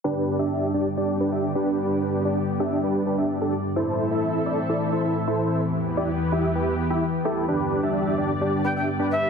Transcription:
<<
  \new Staff \with { instrumentName = "Flute" } { \time 4/4 \key g \major \tempo 4 = 129 r1 | r1 | r1 | r1 |
r2 r8 g''16 g''16 r8 e''8 | }
  \new Staff \with { instrumentName = "Supersaw synth" } { \time 4/4 \key g \major <d' g' b'>8. <d' g' e''>8. <d' g' d''>16 r16 <d' g' d''>8 <d' g' b'>16 <d' g' e''>16 r16 <d' g' b'>8.~ | <d' g' b'>8. <d' g' d''>16 r8 <d' g' e''>8 <d' g' b'>8 <d' g' b'>16 <d' g' e''>8 <d' g' a'>16 r8 | <e' a' c''>8. <e' a' e''>8. <e' a' d''>16 r16 <e' a' d''>8 <e' a' c''>16 <e' a' e''>16 r16 <e' a' c''>8. | r8. <e' g' d''>16 r8 <e' g' e''>8 <e' g' b'>8 r16 <e' g' e''>16 r8 <e' g' a'>8 |
<d' g' b'>8. <d' g' e''>8. <d' g' d''>16 r16 <d' g' d''>8 <d' g' b'>16 <d' g' e''>16 r16 <d' g' b'>8. | }
  \new Staff \with { instrumentName = "Analog synth pad" } { \time 4/4 \key g \major << { <g, b g' d''>1~ | <g, b g' d''>1 | <a, c' a' e''>1 | <e, b g' b'>1 |
<g, b g' d''>1 | } \\ { d1~ | d1 | e1~ | e1 |
d1 | } >> }
>>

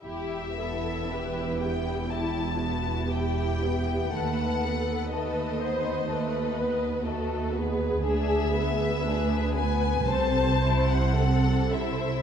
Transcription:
<<
  \new Staff \with { instrumentName = "Violin section" } { \time 4/4 \key e \minor \tempo 4 = 59 e''4. g''8 a''4 g''4 | fis''4 dis''2~ dis''8 r8 | e''4. gis''8 a''8. fis''8. e''8 | }
  \new Staff \with { instrumentName = "Viola section" } { \time 4/4 \key e \minor g'8 a'8 b'8 g'8 e'8 fis'8 g'4 | b'8 a'8 b'8 c''8 b'4 fis'8 gis'8~ | gis'4 b'8 b'8 c''4 a'4 | }
  \new Staff \with { instrumentName = "Violin section" } { \time 4/4 \key e \minor <e' g'>8 <b e'>8 <e' g'>8 <b e'>8 <e' g'>8 <b e'>8 <e' g'>8 <b e'>8 | <a a'>8 <b b'>8 <a a'>8 <b b'>8 <a a'>8 <b b'>8 <a a'>8 <b b'>8 | <d' gis'>8 <b b'>8 <d' gis'>8 <b b'>8 <c' a'>8 <e' c''>8 <c' a'>8 <e' c''>8 | }
  \new Staff \with { instrumentName = "Cello section" } { \clef bass \time 4/4 \key e \minor e,1 | dis,1 | d,2 c2 | }
  \new Staff \with { instrumentName = "Double bass section" } { \clef bass \time 4/4 \key e \minor e,,1 | dis,1 | d,2 c,2 | }
>>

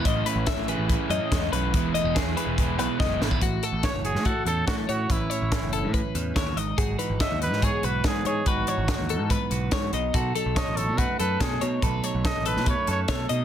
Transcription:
<<
  \new Staff \with { instrumentName = "Clean electric guitar" } { \time 4/4 \key e \major \tempo 4 = 143 dis''8 b'8 e''8 b'4 dis''4 b'8~ | b'8 dis''8 gis'8 b'4 b'8 dis''8 b'8 | fis'8 a'8 cis''4 fis'8 a'4 cis''8 | b'8 cis''4 a'8 b'4 cis''8 dis''8 |
gis'8 b'8 dis''4 gis'8 b'4 cis''8 | b'8 cis''4 a'8 b'4 cis''8 dis''8 | fis'8 a'8 cis''4 fis'8 a'4 cis''8 | b'8 cis''4 a'8 b'4 cis''8 dis''8 | }
  \new Staff \with { instrumentName = "Trumpet" } { \time 4/4 \key e \major r1 | r1 | r4 cis''8 gis'8 a'8 a'8 fis'8 fis'8 | e'2 r2 |
r4 e''8 b'8 cis''8 b'8 gis'8 gis'8 | fis'2 r2 | r4 dis''8 a'8 b'8 b'8 gis'8 r8 | r4 dis''8 b'8 cis''8 cis''8 a'8 r8 | }
  \new Staff \with { instrumentName = "Clean electric guitar" } { \time 4/4 \key e \major << { r8 cis'4 gis'4 cis'4. | r8 a16 b8. gis'4 b4 a16 b16 | e'8 fis'8 e'8 fis'8 e'8 cis'8 e'4 | cis'8 cis'8 cis'8 cis'8 e'8 cis'8 e'16 fis'16 dis'8 |
fis'8 dis'8 fis'8 dis'8 b8 fis'4 dis'8 | dis'8 dis'8 dis'8 dis'8 b8 fis'4 dis'8 | a'8 dis'8 a'8 dis'8 a8 a'4 dis'8 | a'8 dis'8 a'8 dis'8 a8 a'4 dis'8 | } \\ { <a, e>4. e4 e8 gis,8 fis,8 | e,4. e4 b,4. | a,4 e4. e4. | a,4 e4. e4 gis,8~ |
gis,8 e4. gis,4. gis,8~ | gis,8 e4. gis,4. b,8~ | b,8 fis4. fis,4. b,8~ | b,8 fis4. fis,4. b,8 | } >> }
  \new Staff \with { instrumentName = "Overdriven electric guitar" } { \time 4/4 \key e \major <a, e a cis' e'>8 <a cis' e'>8 <e a cis' e'>8 <a, e a cis' e'>8 <e a cis' e'>8 <a cis' e'>8 <a, e a cis' e'>8 <a cis' e'>8 | <e gis b e'>8 <gis b e'>8 <e gis b e'>8 <e gis b e'>8 <e gis b e'>8 <gis b e'>8 <e gis b e'>8 <gis b e'>8 | r1 | r1 |
r1 | r1 | r1 | r1 | }
  \new Staff \with { instrumentName = "Picked electric bass" } { \clef bass \time 4/4 \key e \major a,,8 r16 a,,16 r16 a,,8 a,,8 r16 fis,16 r16 e,8 b,,8 | e,,8. e,,8 e,16 r16 e,,8. b,,16 r16 fis,,8 gis,,8 | a,,8 r16 a,,8 fis,,8 a,8 r16 e,8 a,8 a,8 | a,,8 r16 a,,8 fis,,8 a,8 r16 e,8 dis,8 gis,,8 |
gis,,8 r16 gis,,8 dis,8 gis,8 r16 b,,8 gis,8 gis,8 | gis,,8 r16 gis,,8 dis,8 gis,8 r16 b,,8 gis,8 b,,8 | b,,8 r16 b,,8 a,,8 b,8 r16 fis,8 b,8 b,8 | b,,8 r16 b,,8 a,,8 b,8 r16 fis,8 r8 b,8 | }
  \new DrumStaff \with { instrumentName = "Drums" } \drummode { \time 4/4 <hh bd>8 hh8 <hh bd sn>8 hh8 <hh bd>8 hh8 <hh bd sn>8 hh8 | <hh bd>8 hh8 <hh bd sn>8 hh8 <hh bd>8 hh8 <bd sn>8 sn16 bd16 | <hh bd>8 hh8 <hh bd sn>8 hh16 sn16 <hh bd>8 hh8 <hh bd sn>8 hh8 | <hh bd>8 hh8 <hh bd sn>8 hh8 <hh bd>8 hh8 <hh bd sn>8 hh8 |
<hh bd>8 hh8 <hh bd sn>8 hh16 sn16 <hh bd>8 hh8 <hh bd sn>8 hh8 | <hh bd>8 hh8 <hh bd sn>8 hh8 <hh bd>8 hh8 <hh bd sn>8 hh8 | <hh bd>8 hh8 <hh bd sn>8 hh8 <hh bd>8 hh8 <hh bd sn>8 hh8 | <hh bd>8 hh8 <hh bd sn>8 hh16 sn16 <hh bd>8 hh8 <hh bd sn>8 hh8 | }
>>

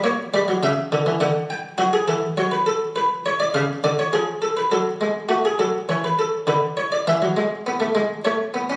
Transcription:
<<
  \new Staff \with { instrumentName = "Harpsichord" } { \time 3/4 \key fis \phrygian \tempo 4 = 102 cis''8 d''8 e''4 fis''8 g''8 | fis'16 gis'16 a'8 cis''16 b'16 a'8 b'8 cis''16 d''16 | eis''8 d''16 cis''16 gis'8 a'16 b'16 a'4 | fis'16 gis'16 a'8 cis''16 b'16 a'8 b'8 cis''16 d''16 |
e''2 cis''4 | }
  \new Staff \with { instrumentName = "Harpsichord" } { \clef bass \time 3/4 \key fis \phrygian ais8 g16 fis16 cis8 d16 e16 d4 | fis8 e8 fis2 | cis8 d8 eis4 fis8 gis8 | a8 fis8 e4 d4 |
e16 fis16 gis8 b16 a16 gis8 a8 b16 cis'16 | }
>>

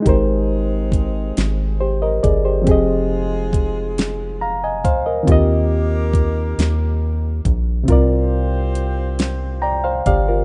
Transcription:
<<
  \new Staff \with { instrumentName = "Reed electric piano" } { \time 6/8 \key aes \lydian \tempo 4. = 46 << { r2 <g' c''>16 <bes' ees''>16 <aes' d''>16 <g' c''>16~ | <g' c''>16 r4. r16 <f'' bes''>16 <ees'' aes''>16 <c'' f''>16 <bes' ees''>16~ | <bes' ees''>16 r2 r8. | r2 <d'' g'' bes''>16 <c'' f''>16 <g' d'' f''>16 <f' bes'>16 | } \\ { <aes ees' g' bes' c''>2. | <f c' g' aes' ees''>2. | <ees c' f' g' ees''>2. | <c c' f' bes' d''>2. | } >> }
  \new Staff \with { instrumentName = "Horn section" } { \time 6/8 \key aes \lydian <aes c' ees' aes'>2~ <aes c' ees' aes'>8 r8 | <aes ees' f' aes'>2~ <aes ees' f' aes'>8 r8 | <bes ees' g' bes'>2~ <bes ees' g' bes'>8 r8 | <c' f' g' c''>2~ <c' f' g' c''>8 r8 | }
  \new Staff \with { instrumentName = "Analog synth bass" } { \clef bass \time 6/8 \key aes \lydian aes,,4. aes,,4 g,,8 | f,,2~ f,,8 d,8 | ees,4. ees,4 bes,,8 | c,2~ c,8 g,,8 | }
  \new DrumStaff \with { instrumentName = "Drums" } \drummode { \time 6/8 <hh bd>4 <hh bd>8 <hh sn>4 <hh bd>8 | <hh bd>4 <hh bd>8 <hh sn>4 <hh bd>8 | <hh bd>4 <hh bd>8 <hh sn>4 <hh bd>8 | <hh bd>4 hh8 <hh sn>4 <hh bd>8 | }
>>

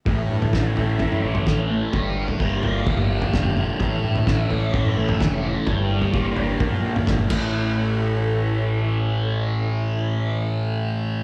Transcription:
<<
  \new Staff \with { instrumentName = "String machine" } { \time 4/4 \tempo 4 = 128 << { <a' e''>1 | <bes' f''>1 | <a' e''>1 | <bes' f''>2.~ <bes' f''>8 <e' a' cis'' e''>8~ |
<e' a' cis'' e''>1~ | <e' a' cis'' e''>1 | } \\ { <e' cis''>1 | <g' d''>1 | <e' cis''>1 | <g' d''>2 <f' d''>4. r8 |
r1 | r1 | } >> }
  \new Staff \with { instrumentName = "Distorted electric guitar" } { \time 4/4 a,4 cis'8 e'8 cis'8 a8 e8 a8 | g,4 bes8 f'8 bes8 f8 d8 f8 | a,4 cis'8 e'8 cis'8 a8 e8 a8 | g,4 bes8 d'8 bes,8 f8 bes,8 <a, e a>8~ |
<a, e a>1~ | <a, e a>1 | }
  \new Staff \with { instrumentName = "Harmonium" } { \clef bass \time 4/4 a,1~ | a,1~ | a,1~ | a,2.~ a,8 a,8~ |
a,1~ | a,1 | }
  \new Staff \with { instrumentName = "Picked electric bass" } { \clef bass \time 4/4 a,,8 g,8 a,,8 a,,8 a,8 a,,8 a,,4 | g,,4 g,,8 g,,8 g,,4 f,,4 | a,,8 g,8 a,,8 a,,8 a,8 a,,8 f,,4 | g,,4 g,,8 g,,8 bes,,4 g,,8 a,,8~ |
a,,1~ | a,,1 | }
  \new DrumStaff \with { instrumentName = "Drums" } \drummode { \time 4/4 <bd tomfh>8. tomfh16 <bd sn>8 tomfh8 <bd tomfh>16 toml8 <tomfh toml>16 <bd sn>4 | <bd tomfh>8. tomfh16 bd8 tomfh8 <bd tomfh>16 toml8 <tomfh toml>16 <bd sn>16 toml16 toml8 | <bd tomfh>8. tomfh16 <bd sn>8 tomfh8 <bd tomfh>16 toml8 <tomfh toml>16 <bd sn>4 | <bd tomfh>8. tomfh16 bd8 tomfh8 <bd tomfh>16 toml8 <tomfh toml>16 <bd sn>16 toml16 <cymc bd>8 |
r4 r4 r4 r4 | r4 r4 r4 r4 | }
>>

